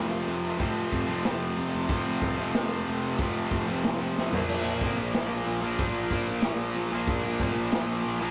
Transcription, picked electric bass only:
Already playing: F1
0.27 F1
0.61 F1
0.93 F1
1.10 F1
1.25 F1
1.58 F1
1.75 F1
1.90 F1
2.07 F1
2.22 C2
2.40 F1
2.56 F1
2.88 F1
3.20 F1
3.52 F1
3.68 F1
3.84 F1
4.18 F1
4.33 A#1
4.49 A#1
4.64 A#1
4.81 F1
4.98 A#1
5.14 A#1
5.47 A#1
5.79 A#1
6.11 A#1
6.28 A#1
6.44 A#1
6.75 A#1
6.92 A#1
7.08 A#1
7.24 A#1
7.40 F1
7.56 A#1
7.72 A#1
8.06 A#1

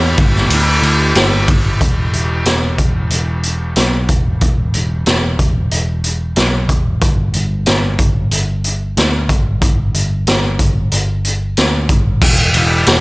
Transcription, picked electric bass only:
Already playing: E2
0.18 G1
0.50 D2
0.82 D2
1.16 G1
1.48 G1
1.81 E1
2.14 E1
2.46 E1
2.79 E1
3.12 E1
3.77 B1
4.09 E1
4.41 E1
4.75 E1
5.07 E1
5.39 E1
5.73 E1
6.37 B1
6.69 E1
7.02 G1
7.35 G1
7.68 G1
7.99 G1
8.32 G1
8.97 D2
9.29 G1
9.61 G1
9.95 G1
10.27 G1
10.60 G1
10.93 G1
11.58 D2
11.89 G1
12.22 E1
12.55 E1
12.87 E1

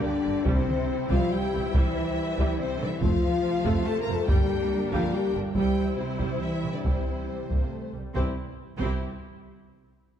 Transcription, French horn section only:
0.03 D4
0.47 C4
1.10 F4
1.33 G4
1.75 E4
2.58 C4
2.79 D4
2.89 E4
3.01 F4
3.86 A4
4.00 A#4
4.15 A4
4.28 G4
4.92 F4
5.14 G4
5.57 G4
5.99 C4
6.42 E4
6.74 D4
6.85 C4
8.16 C4

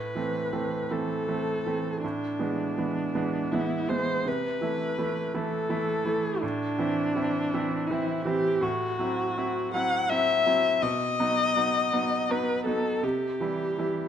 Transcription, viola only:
Already playing: B4
0.91 A4
2.04 D4
3.52 E4
3.89 C5
4.28 B4
5.34 A4
6.41 D4
7.87 E4
8.25 G4
8.63 F#4
9.74 F#5
10.10 E5
10.82 D#5
12.31 B4
12.65 A4
13.04 G4

